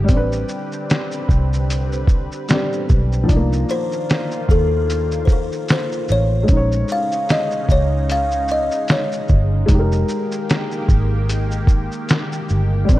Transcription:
0.00 3.25 G4 medium
0.04 3.25 D3 medium
0.04 2.43 G3 medium
0.04 3.25 C4 medium
0.04 3.25 B4 medium
0.08 0.43 A1 loud
0.08 2.45 C4 medium
0.08 kick loud
0.08 closed hi-hat medium
0.08 shaker medium
0.13 2.47 D4 medium
0.17 2.49 B4 medium
0.32 shaker soft
0.49 shaker medium
0.72 shaker soft
0.90 snare loud
0.90 closed hi-hat medium
0.90 shaker medium
1.12 shaker soft
1.29 2.28 C2 medium
1.29 kick medium
1.29 shaker soft
1.53 shaker soft
1.70 closed hi-hat medium
1.70 shaker medium
1.92 shaker soft
2.07 kick loud
2.07 shaker soft
2.32 shaker soft
2.49 3.29 G3 medium
2.49 3.30 C4 medium
2.49 snare loud
2.49 closed hi-hat medium
2.49 shaker medium
2.53 3.26 D4 medium
2.53 3.32 G4 medium
2.73 shaker soft
2.89 3.23 B1 loud
2.89 kick medium
2.89 shaker soft
3.12 shaker medium
3.23 6.42 F3 medium
3.28 3.63 C2 loud
3.28 6.46 D#3 medium
3.28 6.46 A#3 medium
3.28 6.44 D4 medium
3.28 6.46 F4 medium
3.28 kick loud
3.28 closed hi-hat medium
3.28 shaker medium
3.32 6.46 D#4 medium
3.36 6.49 A#3 medium
3.53 shaker soft
3.69 4.52 C5 medium
3.69 shaker medium
3.92 shaker medium
4.10 snare loud
4.10 closed hi-hat medium
4.10 shaker medium
4.31 shaker soft
4.49 5.48 D#2 medium
4.49 5.26 A4 medium
4.49 kick medium
4.49 shaker soft
4.90 closed hi-hat medium
4.90 shaker medium
5.11 shaker soft
5.25 5.30 C5 medium
5.25 kick medium
5.25 shaker soft
5.32 5.72 A#4 medium
5.52 shaker soft
5.68 6.12 C5 medium
5.68 snare loud
5.68 closed hi-hat medium
5.68 shaker medium
5.92 shaker soft
6.08 6.43 A1 medium
6.08 6.93 C#5 medium
6.08 shaker soft
6.43 9.62 G#3 medium
6.48 6.83 A#1 loud
6.48 9.66 C#3 medium
6.48 12.85 G#3 medium
6.48 9.64 C#4 medium
6.48 9.66 C#4 medium
6.48 9.66 D#4 medium
6.48 kick loud
6.48 closed hi-hat medium
6.48 shaker medium
6.52 9.66 D#4 medium
6.56 9.69 C#5 medium
6.72 shaker soft
6.88 7.32 F5 loud
6.88 shaker medium
7.12 shaker medium
7.29 7.71 D#5 loud
7.29 snare loud
7.29 closed hi-hat medium
7.29 shaker medium
7.51 shaker soft
7.69 8.68 C#2 medium
7.69 8.08 C#5 loud
7.69 kick medium
7.69 shaker soft
8.10 8.52 F5 loud
8.10 closed hi-hat medium
8.10 shaker medium
8.31 shaker soft
8.48 8.91 D#5 loud
8.48 shaker soft
8.71 shaker soft
8.88 9.49 C#5 medium
8.88 snare loud
8.88 closed hi-hat medium
8.88 shaker medium
9.12 shaker soft
9.28 9.63 G1 loud
9.28 kick medium
9.28 shaker soft
9.66 10.03 F1 loud
9.66 12.86 D#3 medium
9.66 12.84 G#3 medium
9.66 12.86 A#3 medium
9.66 12.99 G4 medium
9.66 kick loud
9.66 closed hi-hat medium
9.66 shaker medium
9.70 12.86 D#4 medium
9.75 12.88 G4 medium
9.79 12.90 A#4 medium
9.92 shaker soft
10.09 shaker medium
10.32 shaker medium
10.50 snare loud
10.50 closed hi-hat medium
10.50 shaker medium
10.71 shaker soft
10.89 11.88 G#1 medium
10.89 kick medium
10.89 shaker soft
11.29 closed hi-hat medium
11.29 shaker medium
11.51 shaker soft
11.67 kick medium
11.67 shaker soft
11.92 shaker soft
12.09 snare loud
12.09 closed hi-hat medium
12.09 shaker medium
12.32 shaker soft
12.49 12.83 G1 medium
12.49 shaker soft
12.85 12.99 G3 medium
12.89 12.99 A1 loud
12.89 12.99 D3 medium
12.89 12.99 C4 medium
12.89 12.99 B4 medium
12.89 kick loud
12.89 closed hi-hat medium
12.89 shaker medium
12.93 12.99 D4 medium

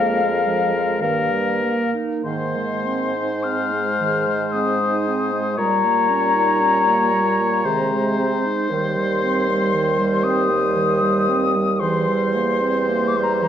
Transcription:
0.00 1.03 F2 medium
0.00 1.03 G#3 soft
0.00 0.23 A#3 soft
0.00 0.97 A#4 soft
0.00 1.89 F5 medium
0.21 0.48 G#3 soft
0.46 0.75 F3 soft
0.73 1.00 G#3 soft
1.00 1.93 G2 medium
1.00 1.32 D#3 soft
1.00 3.16 A#3 medium
1.00 1.91 A#4 soft
1.31 1.64 G3 soft
1.63 1.96 A#3 soft
1.94 2.24 D#4 soft
2.24 5.54 G#2 soft
2.24 2.57 D#3 soft
2.24 5.54 C5 soft
2.24 3.45 C6 medium
2.56 2.87 G#3 soft
2.86 3.18 C4 soft
3.16 3.47 D#4 soft
3.43 5.53 G#3 soft
3.43 3.74 C4 soft
3.43 4.53 F6 medium
3.72 4.01 G#3 soft
4.00 4.29 D#3 soft
4.27 4.56 G#3 soft
4.51 4.82 C4 soft
4.51 5.60 D#6 medium
4.81 5.08 D#4 soft
5.07 5.34 C4 medium
5.32 5.58 G#3 soft
5.57 7.66 A#2 medium
5.57 7.66 G3 medium
5.57 5.86 G3 medium
5.57 7.66 C#5 medium
5.57 8.44 A#5 medium
5.84 6.11 A#3 medium
6.10 6.37 C#4 soft
6.35 6.62 D#4 medium
6.61 6.88 C#4 medium
6.86 7.14 A#3 soft
7.12 7.41 G3 medium
7.40 7.65 A#3 medium
7.64 8.43 C3 medium
7.64 7.94 D#3 soft
7.64 8.70 G#3 medium
7.64 11.54 C5 medium
7.92 8.20 G#3 soft
8.19 8.47 C4 medium
8.46 8.70 D#4 soft
8.69 11.82 D#2 medium
8.69 8.99 D#3 medium
8.69 13.48 G3 medium
8.69 10.25 C6 medium
8.97 9.25 G3 medium
9.24 9.50 C4 soft
9.48 9.75 G3 medium
9.74 10.01 D#3 medium
9.99 10.26 G3 medium
10.23 10.52 C4 medium
10.23 11.81 D#6 medium
10.50 10.77 G3 medium
10.76 11.04 D#3 medium
11.02 11.30 G3 medium
11.29 11.57 C4 medium
11.56 11.81 G3 medium
11.79 13.48 E2 medium
11.79 12.09 E3 medium
11.79 13.48 C5 medium
11.79 13.09 C6 medium
12.08 12.36 G3 medium
12.35 12.62 A#3 medium
12.61 12.90 C4 soft
12.89 13.17 A#3 medium
13.07 13.18 D6 medium
13.16 13.44 G3 medium
13.16 13.24 C6 medium
13.23 13.34 A#5 medium
13.33 13.44 C6 medium
13.42 13.48 E3 medium
13.42 13.48 A#5 medium

